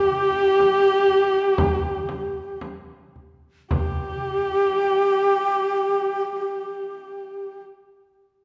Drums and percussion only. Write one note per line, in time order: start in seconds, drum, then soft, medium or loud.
0.13 frame drum soft
0.60 frame drum medium
1.08 frame drum soft
1.58 frame drum medium
2.09 frame drum medium
2.61 frame drum medium
3.16 frame drum soft
3.71 frame drum medium